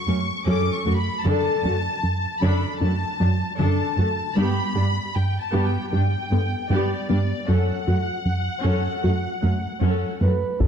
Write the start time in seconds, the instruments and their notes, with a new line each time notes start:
Already playing: violin section C#6
0.07 cello section F#2, analog synth bass F#2, viola section F#3 C#4, synth arpeggio sound A3
0.46 cello section F#2, analog synth bass F#2, synth arpeggio sound F#3, viola section C#4 A4, violin section D6
0.72 violin section C#6
0.86 cello section F#2, analog synth bass F#2, viola section A3 F#4, synth arpeggio sound A3
0.97 violin section B5
1.23 cello section F#2, analog synth bass F#2, synth arpeggio sound D3, viola section D4 A4, violin section A5
1.63 cello section F#2, analog synth bass F#2, viola section A3 F#4, synth arpeggio sound D4
2.03 analog synth bass F#2
2.41 cello section F#2, analog synth bass F#2, synth arpeggio sound D3, viola section D4 A4, violin section B5
2.80 cello section F#2, analog synth bass F#2, viola section A3 F#4, synth arpeggio sound D4, violin section A5
3.20 analog synth bass F#2, cello section F#2, viola section F#3 D4, synth arpeggio sound F#3
3.58 cello section F#2, analog synth bass F#2, synth arpeggio sound D3, viola section D4 A4, violin section A5
3.97 cello section F#2, analog synth bass F#2, synth arpeggio sound F#3, viola section A3 F#4
4.36 cello section G2, analog synth bass G2, synth arpeggio sound G3, viola section B3 G4, violin section B5
4.75 cello section G2, analog synth bass G2, viola section G3 D4, synth arpeggio sound G4
5.15 analog synth bass G2, violin section G5
5.41 violin section A5
5.53 cello section G2, analog synth bass G2, synth arpeggio sound G3, viola section B3 G4
5.66 violin section G5
5.91 cello section G2, analog synth bass G2, viola section G3 D4, synth arpeggio sound G4, violin section G5
6.31 cello section G2, analog synth bass G2, viola section D3 B3, synth arpeggio sound B3
6.70 cello section G2, analog synth bass G2, synth arpeggio sound G3, viola section B3 G4, violin section D5
7.08 analog synth bass G2, cello section G2, viola section G3 D4, synth arpeggio sound B3
7.47 analog synth bass F#2, cello section F#2, synth arpeggio sound F#3, viola section C#4 A4, violin section F#5
7.86 analog synth bass F#2, cello section F#2, viola section A3 F#4, synth arpeggio sound F#4
8.25 analog synth bass F#2
8.63 analog synth bass F#2, cello section F#2, synth arpeggio sound F#3, viola section C#4 A4
9.03 analog synth bass F#2, cello section F#2, viola section A3 F#4, synth arpeggio sound F#4
9.42 cello section F#2, analog synth bass F#2, viola section F#3 C#4, synth arpeggio sound A3
9.81 analog synth bass F#2, cello section F#2, synth arpeggio sound F#3, viola section C#4 A4
10.21 analog synth bass F#2, cello section F#2, synth arpeggio sound A3, viola section A3 F#4, soft synth lead B4
10.60 cello section F#2, analog synth bass F#2, synth arpeggio sound F#3, viola section C#4 F#4, soft synth lead A4, taiko